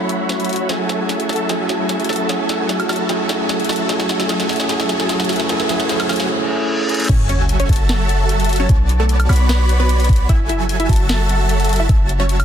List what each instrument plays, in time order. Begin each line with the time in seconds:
Already playing: 808-style bass F#1, supersaw synth F#3 F#4 C#5 E5 B5, tine electric piano A3 C#4 E4 F#4 A4
0.09 closed hi-hat
0.29 snare, closed hi-hat
0.40 closed hi-hat
0.45 closed hi-hat
0.49 closed hi-hat
0.53 closed hi-hat
0.56 closed hi-hat
0.68 808-style bass F#1, supersaw synth F#3 F#4 A4 E5 G#5, tine electric piano A3 C#4 E4 G#4, snare, closed hi-hat, riser
0.89 snare, closed hi-hat
0.99 tine electric piano A3 C#4 E4 G#4
1.09 snare, closed hi-hat
1.20 closed hi-hat
1.29 808-style bass F#1, supersaw synth F#3 F#4 A4 E5 A5, snare, closed hi-hat
1.33 closed hi-hat
1.36 tine electric piano A3 C#4, closed hi-hat
1.40 tine electric piano E4 A4
1.48 808-style bass F#1, supersaw synth F#3 F#4 A4 E5 G#5, tine electric piano A3 C#4 E4 G#4, snare, closed hi-hat
1.69 snare, closed hi-hat
1.79 tine electric piano A3 C#4 E4 G#4
1.89 snare, closed hi-hat
2.00 closed hi-hat
2.04 closed hi-hat
2.09 808-style bass F#2, supersaw synth F#3 F#4 A4 E5 A5, snare, closed hi-hat
2.13 closed hi-hat
2.16 tine electric piano A3 C#4, closed hi-hat
2.20 tine electric piano E4 A4
2.28 808-style bass B1, supersaw synth F#3 F#4 A4 E5 G#5, tine electric piano A3 C#4 E4 G#4, snare, closed hi-hat
2.49 snare, closed hi-hat
2.59 tine electric piano A3 C#4 E4 G#4
2.69 snare, closed hi-hat
2.80 closed hi-hat, high woodblock
2.89 808-style bass B1, supersaw synth F#3 F#4 A4 E5 A5, snare, closed hi-hat, high woodblock
2.93 closed hi-hat
2.96 tine electric piano A3 C#4, closed hi-hat
3.00 tine electric piano E4 A4
3.08 808-style bass B1, supersaw synth F#3 F#4 A4 E5 G#5, tine electric piano A3 C#4 E4 G#4, snare, closed hi-hat
3.29 snare, closed hi-hat
3.39 tine electric piano A3 C#4 E4 G#4
3.49 snare, closed hi-hat
3.60 closed hi-hat
3.64 closed hi-hat
3.69 supersaw synth F#3 F#4 A4 E5 A5, snare, closed hi-hat
3.73 closed hi-hat
3.76 tine electric piano A3 C#4, closed hi-hat
3.80 tine electric piano E4 A4
3.88 808-style bass F#1, supersaw synth F#3 F#4 A4 E5 G#5, tine electric piano A3 C#4 E4 G#4, snare, closed hi-hat
4.00 snare
4.09 snare, closed hi-hat
4.19 tine electric piano A3 C#4 E4 G#4, snare
4.28 808-style bass F#1, supersaw synth F#3 F#4 A4 E5 G#5, tine electric piano A3 C#4 E4 G#4, snare, closed hi-hat
4.40 snare, closed hi-hat
4.49 snare, closed hi-hat
4.53 closed hi-hat
4.56 tine electric piano A3 C#4, snare, closed hi-hat
4.60 tine electric piano E4 G#4
4.68 808-style bass F#1, supersaw synth F#3 F#4 A4 E5 G#5, tine electric piano A3 C#4 E4 G#4, snare, closed hi-hat
4.80 snare
4.89 snare, closed hi-hat
4.99 tine electric piano A3 C#4 E4 G#4, snare
5.08 808-style bass F#1, supersaw synth F#3 F#4 A4 E5 G#5, tine electric piano A3 C#4 E4 G#4, snare, closed hi-hat
5.20 snare, closed hi-hat
5.24 closed hi-hat
5.29 snare, closed hi-hat
5.33 closed hi-hat
5.36 tine electric piano A3 C#4, snare, closed hi-hat
5.40 tine electric piano E4 G#4
5.48 808-style bass F#1, supersaw synth F#3 F#4 A4 E5 G#5, tine electric piano A3 C#4 E4 G#4, snare, closed hi-hat
5.60 snare
5.68 supersaw synth F#3 F#4 A4 E5 G#5, tine electric piano A3 C#4 E4 G#4, snare, closed hi-hat
5.80 snare
5.88 supersaw synth F#3 F#4 A4 E5 G#5, tine electric piano A3 C#4 E4 G#4, snare, closed hi-hat
6.00 snare, closed hi-hat, high woodblock
6.08 808-style bass F#1, supersaw synth F#3 F#4 A4 E5 G#5, tine electric piano A3 C#4 E4 G#4, snare, closed hi-hat, high woodblock
6.13 closed hi-hat
6.16 snare, closed hi-hat
6.28 tine electric piano A3 C#4 E4 G#4, reverse cymbal
6.48 tine electric piano A3 C#4 E4 G#4
6.68 tine electric piano A3 C#4 E4 G#4
6.88 tine electric piano A3 C#4 E4 G#4, closed hi-hat
6.94 closed hi-hat
7.00 closed hi-hat
7.04 closed hi-hat
7.09 808-style bass F#1, supersaw synth F#3 F#4 A4 E5 G#5, synth pluck C#4 C#5, digital synth lead G#5, kick, closed hi-hat, crash, sub drop
7.29 synth pluck C#4 C#5, closed hi-hat
7.49 closed hi-hat
7.60 synth pluck C#4 C#5, closed hi-hat
7.69 808-style bass F#1, supersaw synth F#3 F#4 A4 E5 A5, digital synth lead A5, kick, closed hi-hat
7.73 closed hi-hat
7.76 closed hi-hat
7.89 snare, closed hi-hat
8.09 closed hi-hat
8.29 closed hi-hat
8.40 closed hi-hat
8.44 closed hi-hat
8.49 closed hi-hat
8.53 closed hi-hat
8.56 synth pluck C#4 C#5, closed hi-hat
8.69 808-style bass B1, kick, closed hi-hat
8.89 closed hi-hat
9.00 synth pluck A3 A4
9.09 closed hi-hat
9.20 closed hi-hat, high woodblock
9.29 808-style bass B1, supersaw synth B3 F#4 C#5 D5 B5, digital synth lead B5, closed hi-hat, high woodblock
9.33 closed hi-hat
9.36 closed hi-hat
9.49 synth pluck B3 B4, snare, closed hi-hat
9.69 closed hi-hat
9.80 synth pluck B3 B4
9.89 closed hi-hat
10.00 closed hi-hat
10.04 closed hi-hat
10.09 kick, closed hi-hat
10.13 closed hi-hat
10.16 closed hi-hat
10.29 808-style bass F#1, supersaw synth F#3 F#4 A4 E5 G#5, synth pluck E4 E5, digital synth lead G#5, kick, closed hi-hat
10.49 synth pluck E4 E5, closed hi-hat
10.69 closed hi-hat
10.80 synth pluck E4 E5, closed hi-hat
10.89 808-style bass F#1, supersaw synth F#3 F#4 A4 E5 A5, digital synth lead A5, kick, closed hi-hat
10.93 closed hi-hat
10.96 closed hi-hat
11.09 snare, closed hi-hat
11.29 closed hi-hat
11.49 closed hi-hat
11.60 closed hi-hat
11.64 closed hi-hat
11.69 closed hi-hat
11.73 closed hi-hat
11.76 synth pluck E4 E5, closed hi-hat
11.89 808-style bass F#1, digital synth lead A5, kick, closed hi-hat
12.09 closed hi-hat
12.20 synth pluck C#4 C#5
12.29 closed hi-hat
12.40 closed hi-hat, high woodblock